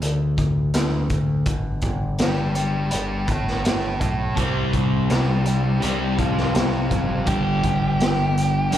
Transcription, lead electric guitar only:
2.20 D4 B4
2.55 D4 B4
2.92 D4 B4
3.31 E4 A4
3.66 E4 A4
4.00 E4 A4
5.10 D4 B4
5.46 D4 B4
5.84 D4 B4
6.19 C4 A4
6.56 C4 A4
6.92 C4 A4
7.27 G4

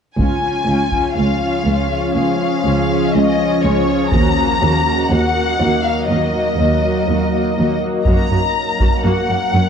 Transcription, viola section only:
0.19 C#4 F4
0.43 C#4 F4
0.68 C#4 F4
0.92 C#4 F4
1.17 C#4 F4
1.41 C#4 F4
1.66 C#4 F4
1.91 C#4 F4
2.16 C#4 F4
2.40 C#4 F4
2.65 C#4 F4
2.89 C#4 F4
3.14 C#4 F4
3.38 C#4 F4
3.63 C#4 F4
3.88 C#4 F4
4.12 A#3 F#4
4.37 A#3 F#4
4.61 A#3 F#4
4.85 A#3 F#4
5.11 A#3 F#4
5.35 A#3 F#4
5.60 A#3 F#4
5.85 A#3 F#4
6.10 A#3 F#4
6.34 A#3 F#4
6.58 A#3 F#4
6.84 A#3 F#4
7.09 A#3 F#4
7.33 A#3 F#4
7.57 A#3 F#4
7.81 A#3 F#4
8.06 A#3 F#4
8.31 A#3 F#4
8.80 A#3 F#4
9.03 A#3 F#4
9.29 A#3 F#4
9.54 F#3 C#4

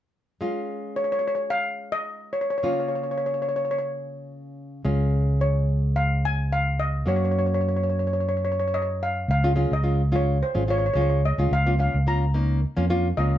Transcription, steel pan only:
0.96 C#5
1.04 C#5
1.12 C#5
1.19 C#5
1.28 C#5
1.35 C#5
1.50 F5
1.92 D#5
2.33 C#5
2.41 C#5
2.50 C#5
2.58 C#5
2.65 C#5
2.73 C#5
2.80 C#5
2.89 C#5
2.95 C#5
3.03 C#5
3.11 C#5
3.18 C#5
3.26 C#5
3.34 C#5
3.42 C#5
3.49 C#5
3.56 C#5
3.65 C#5
3.71 C#5
3.79 C#5
5.41 C#5
5.96 F5
6.25 G#5
6.53 F5
6.80 D#5
7.08 C#5
7.16 C#5
7.25 C#5
7.32 C#5
7.39 C#5
7.46 C#5
7.54 C#5
7.61 C#5
7.68 C#5
7.77 C#5
7.83 C#5
7.90 C#5
7.99 C#5
8.07 C#5
8.13 C#5
8.21 C#5
8.29 C#5
8.37 C#5
8.45 C#5
8.52 C#5
8.60 C#5
8.68 C#5
8.74 C#5 D#5
8.82 C#5
9.03 F5
9.31 F5
9.73 D#5
10.16 C#5
10.43 C5
10.70 C#5
10.78 C#5
10.86 C#5
10.94 C#5
11.01 C#5
11.10 C#5
11.25 D#5
11.53 F5
11.80 F5
12.08 A#5
13.17 D#5

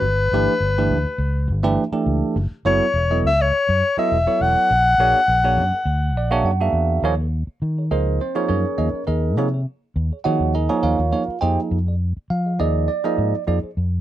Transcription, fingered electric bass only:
0.02 G1
0.32 G1
0.60 G1
0.89 D2
1.05 muted fingered electric bass stroke
1.18 C#2
1.48 G1
1.92 muted fingered electric bass stroke
2.06 C#2
2.36 F#1
2.51 muted fingered electric bass stroke
2.65 F#1
2.94 E1
3.23 C#2
3.69 F#2
3.97 muted fingered electric bass stroke
4.12 E1
4.41 E1
4.71 A#1
4.98 A#1
5.28 A#1
5.57 F#2
5.72 muted fingered electric bass stroke
5.85 D2
6.15 A#1
6.44 F#2
6.73 E2
7.02 D#2
7.47 muted fingered electric bass stroke
7.62 D#3
7.91 C#2
8.49 F#2
8.78 D#2
8.93 muted fingered electric bass stroke
9.08 D#2
9.38 C3
9.96 D#2
10.26 D#3
10.40 D#2
10.83 D#2
10.99 D#2
11.28 muted fingered electric bass stroke
11.42 F2
11.71 F2
12.17 muted fingered electric bass stroke
12.30 F3
12.60 D#2
13.18 G#2
13.48 F2
13.63 muted fingered electric bass stroke
13.77 F2

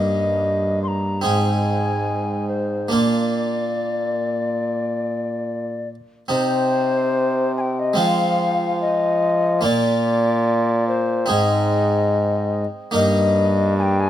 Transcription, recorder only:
Already playing: D#5
0.83 C6
0.88 A#5
1.24 G#5
2.48 C5
2.92 D5
6.30 C5
7.57 G5 G#5
7.79 D#5
7.98 F5
8.81 D#5
9.64 D5
10.88 C5
11.31 D#5
12.95 D#5
13.78 G#5
13.82 G5
14.00 G#5

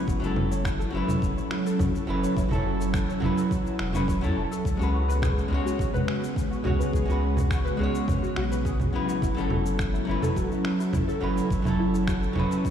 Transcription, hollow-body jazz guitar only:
Already playing: F#3 C#4 E4 B4
0.20 F#3 C#4
0.24 E4 A4
0.91 F#3 C#4
0.95 E4 B4
2.07 F#3 C#4 E4 B4
2.49 F#3 C#4
2.53 E4 A4
3.20 F#3 C#4 E4
3.26 B4
3.93 F#3 C#4 E4 B4
4.21 F#3 C#4 E4 A4
4.77 G#3 C#4
4.81 F#4 B4
5.48 G#3 C#4
5.53 F#4 C#5
6.64 G#3 C#4 F#4 C#5
7.06 G#3 C#4
7.10 F#4 B4
7.77 G#3 C#4
7.81 F#4 C#5
8.93 F#3 C#4 E4 B4
9.35 F#3 C#4 E4
9.40 A4
10.05 F#3 C#4
10.09 E4 B4
11.21 F#3 C#4 E4 B4
11.62 F#3 C#4
11.66 E4 A4
12.33 F#3 C#4
12.37 E4 B4

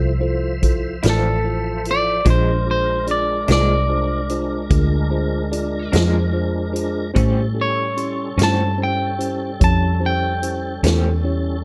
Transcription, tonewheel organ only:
Already playing: F3 C5 E5
2.25 G#3 D4 A#4
7.15 G3 C#4 A4

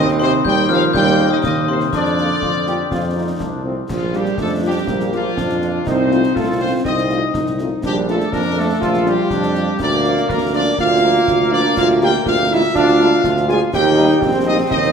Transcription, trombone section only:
Already playing: C4
0.46 A#3
1.94 D4
2.42 F4
2.68 G4
2.92 F4
3.16 D#4
3.40 D4
3.65 C4
4.39 D4
4.88 A#3
5.37 D4
5.85 D#4
6.35 F4
6.85 C4
7.35 D#4
7.84 D4
8.32 D4
8.81 F4
9.31 D4
9.80 A#3
10.76 A#3
12.75 D4
13.25 F4
13.75 D#4
14.23 C4

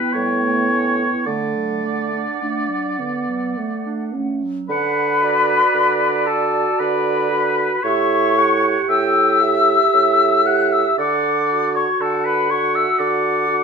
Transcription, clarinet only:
Already playing: E4
0.15 G3
0.43 A3
0.71 C#4
0.99 E4
1.26 D3
1.56 F#3
1.83 A3
2.13 D4
2.42 A3
2.69 F#3
2.99 D3
3.29 F#3
3.58 A3
3.86 D4
4.15 A3
4.44 F#3
4.71 F#5
5.22 D5
7.85 E5
8.38 F#5
8.89 G5
9.42 E5
10.99 F#5
12.03 F#5

